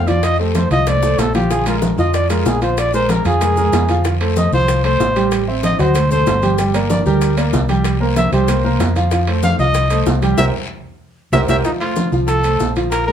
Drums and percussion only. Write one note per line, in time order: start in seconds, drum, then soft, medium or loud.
0.07 high bongo soft
0.07 high conga medium
0.07 high timbale medium
0.07 short guiro medium
0.07 maracas soft
0.23 high bongo medium
0.23 high conga soft
0.23 high timbale medium
0.23 long guiro medium
0.23 maracas medium
0.39 high conga soft
0.55 high bongo medium
0.55 high conga medium
0.55 high timbale medium
0.55 low timbale medium
0.55 short guiro medium
0.55 maracas medium
0.71 high conga soft
0.71 high timbale medium
0.71 short guiro medium
0.71 maracas soft
0.87 high bongo medium
0.87 high conga soft
0.87 low conga medium
0.87 high timbale medium
0.87 long guiro medium
0.87 maracas medium
1.03 low bongo medium
1.03 high conga soft
1.03 maracas medium
1.18 low bongo medium
1.18 high conga soft
1.18 high timbale medium
1.18 low timbale medium
1.18 short guiro medium
1.18 maracas medium
1.34 low bongo medium
1.34 high conga medium
1.34 high timbale medium
1.34 short guiro medium
1.34 maracas soft
1.51 high bongo medium
1.51 high timbale medium
1.51 long guiro medium
1.51 maracas medium
1.66 high conga soft
1.66 high timbale loud
1.66 maracas medium
1.82 high bongo medium
1.82 high conga loud
1.82 low timbale medium
1.82 short guiro medium
1.82 maracas medium
1.98 high conga soft
1.98 short guiro medium
1.98 maracas soft
2.14 high bongo medium
2.14 high conga soft
2.14 high timbale medium
2.14 long guiro medium
2.14 maracas medium
2.29 high bongo soft
2.29 high conga soft
2.29 high timbale loud
2.29 maracas medium
2.45 high bongo soft
2.45 low bongo medium
2.45 low timbale medium
2.45 short guiro medium
2.45 maracas medium
2.62 high bongo soft
2.62 high timbale medium
2.62 short guiro medium
2.62 maracas soft
2.77 high bongo medium
2.77 high conga soft
2.77 high timbale loud
2.77 long guiro medium
2.77 maracas medium
2.93 high conga soft
2.93 maracas medium
3.09 high bongo medium
3.09 high conga loud
3.09 high timbale medium
3.09 low timbale medium
3.09 short guiro medium
3.09 maracas medium
3.25 high conga soft
3.25 high timbale medium
3.25 short guiro medium
3.25 maracas soft
3.41 high bongo medium
3.41 high conga soft
3.41 low conga medium
3.41 high timbale loud
3.41 long guiro medium
3.41 maracas medium
3.57 high bongo soft
3.57 high conga soft
3.57 low conga medium
3.57 maracas medium
3.73 high bongo soft
3.73 low bongo medium
3.73 high conga soft
3.73 high timbale medium
3.73 low timbale medium
3.73 short guiro medium
3.73 maracas medium
3.88 high bongo soft
3.88 high timbale medium
3.88 short guiro medium
3.88 maracas soft
4.04 high bongo medium
4.04 high conga soft
4.04 high timbale medium
4.04 long guiro medium
4.04 maracas medium
4.21 high conga soft
4.21 high timbale medium
4.36 high bongo medium
4.36 high conga loud
4.36 low timbale medium
4.36 short guiro medium
4.36 maracas medium
4.52 high conga soft
4.52 short guiro medium
4.52 maracas soft
4.68 high bongo medium
4.68 high conga soft
4.68 high timbale medium
4.68 long guiro medium
4.68 maracas medium
4.84 high bongo soft
4.84 high conga soft
4.84 high timbale loud
5.00 high bongo soft
5.00 low bongo medium
5.00 high conga soft
5.00 low timbale medium
5.00 short guiro medium
5.00 maracas medium
5.16 high bongo soft
5.16 high timbale medium
5.16 short guiro medium
5.16 maracas soft
5.31 high bongo medium
5.31 high conga soft
5.31 high timbale loud
5.31 long guiro medium
5.31 maracas medium
5.47 high conga soft
5.63 high bongo medium
5.63 high conga loud
5.63 high timbale medium
5.63 low timbale medium
5.63 short guiro medium
5.63 maracas medium
5.79 high conga soft
5.79 high timbale medium
5.79 short guiro medium
5.79 maracas soft
5.95 high bongo medium
5.95 high conga soft
5.95 low conga medium
5.95 high timbale loud
5.95 long guiro medium
5.95 maracas medium
6.11 high bongo soft
6.11 high conga soft
6.11 low conga medium
6.11 maracas medium
6.27 high bongo soft
6.27 low bongo medium
6.27 high conga soft
6.27 high timbale medium
6.27 low timbale medium
6.27 short guiro medium
6.27 maracas medium
6.42 high bongo soft
6.42 high conga medium
6.42 high timbale medium
6.42 short guiro medium
6.42 maracas soft
6.58 high bongo medium
6.58 high conga soft
6.58 high timbale medium
6.58 long guiro medium
6.58 maracas medium
6.74 high conga soft
6.74 high timbale loud
6.74 maracas medium
6.90 high bongo medium
6.90 high conga loud
6.90 low timbale medium
6.90 short guiro medium
6.90 maracas medium
7.05 high conga soft
7.05 short guiro medium
7.05 maracas soft
7.21 high bongo medium
7.21 high timbale medium
7.21 long guiro medium
7.21 maracas medium
7.37 high bongo soft
7.37 high conga soft
7.37 high timbale medium
7.37 maracas medium
7.53 high bongo soft
7.53 low bongo medium
7.53 high conga soft
7.53 low timbale medium
7.53 short guiro medium
7.53 maracas medium
7.68 high bongo soft
7.68 high conga medium
7.68 high timbale medium
7.68 short guiro medium
7.68 maracas soft
7.84 high bongo medium
7.84 high conga soft
7.84 high timbale loud
7.84 long guiro medium
7.84 maracas medium
8.00 high conga soft
8.16 high bongo medium
8.16 high conga loud
8.16 high timbale medium
8.16 low timbale medium
8.16 short guiro medium
8.16 maracas medium
8.32 high conga soft
8.32 high timbale medium
8.32 short guiro medium
8.32 maracas soft
8.48 high bongo medium
8.48 high conga soft
8.48 low conga medium
8.48 high timbale medium
8.48 long guiro medium
8.48 maracas medium
8.64 high bongo soft
8.64 high conga soft
8.64 low conga medium
8.79 high bongo soft
8.79 low bongo medium
8.79 high conga soft
8.79 high timbale medium
8.79 low timbale medium
8.79 short guiro medium
8.79 maracas medium
8.96 high bongo soft
8.96 high timbale medium
8.96 short guiro medium
8.96 maracas soft
9.11 high bongo medium
9.11 high conga soft
9.11 high timbale medium
9.11 long guiro medium
9.11 maracas medium
9.27 high conga soft
9.27 high timbale medium
9.43 high bongo medium
9.43 high conga loud
9.43 low timbale medium
9.43 short guiro medium
9.43 maracas medium
9.59 high conga soft
9.59 short guiro medium
9.59 maracas soft
9.74 high bongo medium
9.74 high conga soft
9.74 high timbale medium
9.74 long guiro medium
9.74 maracas medium
9.90 high bongo soft
9.90 high conga soft
9.90 high timbale loud
9.90 maracas medium
10.06 high bongo soft
10.06 low bongo medium
10.06 high conga soft
10.06 low timbale medium
10.06 short guiro medium
10.06 maracas medium
10.22 high bongo soft
10.22 high conga medium
10.22 high timbale medium
10.22 short guiro medium
10.22 maracas soft
10.38 low bongo loud
10.38 low conga medium
10.38 high timbale loud
10.38 long guiro loud
10.38 maracas loud
11.33 low bongo loud
11.33 low conga loud
11.33 high timbale loud
11.33 long guiro loud
11.33 maracas loud
11.49 low bongo loud
11.49 low conga loud
11.49 high timbale loud
11.49 long guiro loud
11.49 maracas loud
11.64 high bongo medium
11.64 high conga soft
11.64 high timbale medium
11.64 long guiro medium
11.64 maracas medium
11.81 high conga soft
11.81 high timbale medium
11.96 high bongo medium
11.96 high conga medium
11.96 low timbale medium
11.96 short guiro medium
11.96 maracas medium
12.12 high conga soft
12.12 short guiro medium
12.12 maracas soft
12.28 high bongo medium
12.28 high conga soft
12.28 high timbale medium
12.28 long guiro medium
12.28 maracas medium
12.44 high bongo soft
12.44 high conga soft
12.44 high timbale medium
12.44 maracas medium
12.60 high bongo soft
12.60 low bongo medium
12.60 high conga soft
12.60 low timbale medium
12.60 short guiro medium
12.60 maracas medium
12.76 high bongo soft
12.76 high timbale medium
12.76 short guiro medium
12.76 maracas soft
12.92 high bongo medium
12.92 high conga soft
12.92 high timbale loud
12.92 long guiro medium
12.92 maracas medium
13.08 high conga soft